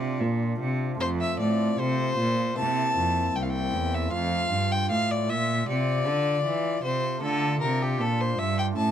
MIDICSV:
0, 0, Header, 1, 4, 480
1, 0, Start_track
1, 0, Key_signature, -1, "major"
1, 0, Tempo, 788436
1, 609, Time_signature, 4, 2, 24, 8
1, 1569, Tempo, 774194
1, 5498, End_track
2, 0, Start_track
2, 0, Title_t, "Violin"
2, 0, Program_c, 0, 40
2, 0, Note_on_c, 0, 74, 120
2, 106, Note_off_c, 0, 74, 0
2, 611, Note_on_c, 0, 72, 112
2, 658, Note_off_c, 0, 72, 0
2, 737, Note_on_c, 0, 76, 104
2, 844, Note_off_c, 0, 76, 0
2, 848, Note_on_c, 0, 74, 98
2, 1091, Note_on_c, 0, 72, 112
2, 1100, Note_off_c, 0, 74, 0
2, 1566, Note_off_c, 0, 72, 0
2, 1570, Note_on_c, 0, 81, 111
2, 2051, Note_on_c, 0, 79, 83
2, 2060, Note_off_c, 0, 81, 0
2, 2094, Note_on_c, 0, 77, 71
2, 2103, Note_off_c, 0, 79, 0
2, 2140, Note_on_c, 0, 79, 101
2, 2149, Note_off_c, 0, 77, 0
2, 2416, Note_on_c, 0, 76, 100
2, 2425, Note_off_c, 0, 79, 0
2, 2526, Note_off_c, 0, 76, 0
2, 2530, Note_on_c, 0, 77, 117
2, 2896, Note_on_c, 0, 79, 108
2, 2905, Note_off_c, 0, 77, 0
2, 3009, Note_off_c, 0, 79, 0
2, 3012, Note_on_c, 0, 77, 111
2, 3138, Note_on_c, 0, 74, 101
2, 3147, Note_off_c, 0, 77, 0
2, 3253, Note_on_c, 0, 76, 110
2, 3263, Note_off_c, 0, 74, 0
2, 3493, Note_off_c, 0, 76, 0
2, 3496, Note_on_c, 0, 74, 115
2, 4197, Note_off_c, 0, 74, 0
2, 4212, Note_on_c, 0, 72, 104
2, 4445, Note_off_c, 0, 72, 0
2, 4451, Note_on_c, 0, 69, 112
2, 4685, Note_off_c, 0, 69, 0
2, 4689, Note_on_c, 0, 70, 104
2, 4818, Note_on_c, 0, 67, 101
2, 4827, Note_off_c, 0, 70, 0
2, 4936, Note_on_c, 0, 69, 106
2, 4945, Note_off_c, 0, 67, 0
2, 5059, Note_on_c, 0, 72, 102
2, 5068, Note_off_c, 0, 69, 0
2, 5169, Note_on_c, 0, 76, 116
2, 5178, Note_off_c, 0, 72, 0
2, 5289, Note_off_c, 0, 76, 0
2, 5295, Note_on_c, 0, 79, 98
2, 5341, Note_off_c, 0, 79, 0
2, 5405, Note_on_c, 0, 81, 104
2, 5498, Note_off_c, 0, 81, 0
2, 5498, End_track
3, 0, Start_track
3, 0, Title_t, "Pipe organ"
3, 0, Program_c, 1, 19
3, 0, Note_on_c, 1, 48, 61
3, 0, Note_on_c, 1, 62, 66
3, 0, Note_on_c, 1, 65, 64
3, 107, Note_off_c, 1, 48, 0
3, 132, Note_on_c, 1, 46, 62
3, 348, Note_off_c, 1, 46, 0
3, 372, Note_on_c, 1, 48, 67
3, 578, Note_off_c, 1, 62, 0
3, 582, Note_off_c, 1, 65, 0
3, 585, Note_on_c, 1, 57, 61
3, 587, Note_off_c, 1, 48, 0
3, 594, Note_on_c, 1, 60, 59
3, 603, Note_on_c, 1, 65, 64
3, 613, Note_on_c, 1, 41, 70
3, 826, Note_off_c, 1, 41, 0
3, 849, Note_on_c, 1, 45, 75
3, 1064, Note_off_c, 1, 45, 0
3, 1087, Note_on_c, 1, 48, 79
3, 1294, Note_off_c, 1, 57, 0
3, 1299, Note_off_c, 1, 60, 0
3, 1304, Note_off_c, 1, 48, 0
3, 1329, Note_on_c, 1, 46, 72
3, 1541, Note_on_c, 1, 58, 56
3, 1542, Note_off_c, 1, 65, 0
3, 1545, Note_off_c, 1, 46, 0
3, 1551, Note_on_c, 1, 60, 59
3, 1559, Note_on_c, 1, 64, 62
3, 1568, Note_on_c, 1, 48, 64
3, 1785, Note_off_c, 1, 48, 0
3, 1805, Note_on_c, 1, 41, 69
3, 2023, Note_off_c, 1, 41, 0
3, 2046, Note_on_c, 1, 36, 62
3, 2263, Note_off_c, 1, 36, 0
3, 2286, Note_on_c, 1, 40, 71
3, 2490, Note_off_c, 1, 58, 0
3, 2495, Note_off_c, 1, 60, 0
3, 2497, Note_on_c, 1, 57, 62
3, 2499, Note_off_c, 1, 64, 0
3, 2504, Note_off_c, 1, 40, 0
3, 2508, Note_on_c, 1, 60, 62
3, 2516, Note_on_c, 1, 65, 64
3, 2525, Note_on_c, 1, 41, 73
3, 2743, Note_off_c, 1, 41, 0
3, 2746, Note_off_c, 1, 57, 0
3, 2751, Note_off_c, 1, 60, 0
3, 2768, Note_on_c, 1, 43, 76
3, 2986, Note_off_c, 1, 43, 0
3, 3010, Note_on_c, 1, 45, 73
3, 3228, Note_off_c, 1, 45, 0
3, 3255, Note_on_c, 1, 46, 68
3, 3470, Note_off_c, 1, 46, 0
3, 3492, Note_on_c, 1, 48, 65
3, 3708, Note_off_c, 1, 48, 0
3, 3733, Note_on_c, 1, 50, 66
3, 3948, Note_off_c, 1, 50, 0
3, 3970, Note_on_c, 1, 52, 65
3, 4186, Note_off_c, 1, 52, 0
3, 4212, Note_on_c, 1, 48, 72
3, 4418, Note_off_c, 1, 65, 0
3, 4422, Note_on_c, 1, 57, 59
3, 4426, Note_off_c, 1, 48, 0
3, 4431, Note_on_c, 1, 62, 68
3, 4440, Note_on_c, 1, 65, 60
3, 4450, Note_on_c, 1, 50, 64
3, 4665, Note_off_c, 1, 50, 0
3, 4667, Note_off_c, 1, 57, 0
3, 4689, Note_on_c, 1, 48, 71
3, 4905, Note_off_c, 1, 48, 0
3, 4931, Note_on_c, 1, 46, 72
3, 5146, Note_off_c, 1, 46, 0
3, 5171, Note_on_c, 1, 43, 68
3, 5375, Note_off_c, 1, 62, 0
3, 5379, Note_off_c, 1, 65, 0
3, 5381, Note_on_c, 1, 57, 58
3, 5385, Note_off_c, 1, 43, 0
3, 5390, Note_on_c, 1, 61, 61
3, 5399, Note_on_c, 1, 64, 61
3, 5409, Note_on_c, 1, 45, 71
3, 5498, Note_off_c, 1, 45, 0
3, 5498, Note_off_c, 1, 57, 0
3, 5498, Note_off_c, 1, 61, 0
3, 5498, Note_off_c, 1, 64, 0
3, 5498, End_track
4, 0, Start_track
4, 0, Title_t, "Cello"
4, 0, Program_c, 2, 42
4, 0, Note_on_c, 2, 48, 93
4, 125, Note_on_c, 2, 46, 86
4, 134, Note_off_c, 2, 48, 0
4, 363, Note_off_c, 2, 46, 0
4, 366, Note_on_c, 2, 48, 83
4, 603, Note_off_c, 2, 48, 0
4, 607, Note_on_c, 2, 41, 95
4, 830, Note_off_c, 2, 41, 0
4, 847, Note_on_c, 2, 45, 84
4, 1082, Note_off_c, 2, 45, 0
4, 1086, Note_on_c, 2, 48, 87
4, 1323, Note_off_c, 2, 48, 0
4, 1328, Note_on_c, 2, 46, 87
4, 1564, Note_off_c, 2, 46, 0
4, 1571, Note_on_c, 2, 48, 94
4, 1807, Note_off_c, 2, 48, 0
4, 1813, Note_on_c, 2, 41, 82
4, 2046, Note_off_c, 2, 41, 0
4, 2050, Note_on_c, 2, 36, 82
4, 2287, Note_on_c, 2, 40, 80
4, 2297, Note_off_c, 2, 36, 0
4, 2526, Note_off_c, 2, 40, 0
4, 2530, Note_on_c, 2, 41, 101
4, 2765, Note_off_c, 2, 41, 0
4, 2770, Note_on_c, 2, 43, 83
4, 3008, Note_on_c, 2, 45, 79
4, 3018, Note_off_c, 2, 43, 0
4, 3253, Note_on_c, 2, 46, 86
4, 3262, Note_off_c, 2, 45, 0
4, 3491, Note_off_c, 2, 46, 0
4, 3495, Note_on_c, 2, 48, 88
4, 3733, Note_on_c, 2, 50, 91
4, 3743, Note_off_c, 2, 48, 0
4, 3964, Note_off_c, 2, 50, 0
4, 3968, Note_on_c, 2, 52, 81
4, 4203, Note_off_c, 2, 52, 0
4, 4209, Note_on_c, 2, 48, 79
4, 4444, Note_off_c, 2, 48, 0
4, 4450, Note_on_c, 2, 50, 92
4, 4684, Note_off_c, 2, 50, 0
4, 4689, Note_on_c, 2, 48, 82
4, 4929, Note_on_c, 2, 46, 78
4, 4939, Note_off_c, 2, 48, 0
4, 5168, Note_off_c, 2, 46, 0
4, 5172, Note_on_c, 2, 43, 80
4, 5405, Note_off_c, 2, 43, 0
4, 5408, Note_on_c, 2, 45, 90
4, 5498, Note_off_c, 2, 45, 0
4, 5498, End_track
0, 0, End_of_file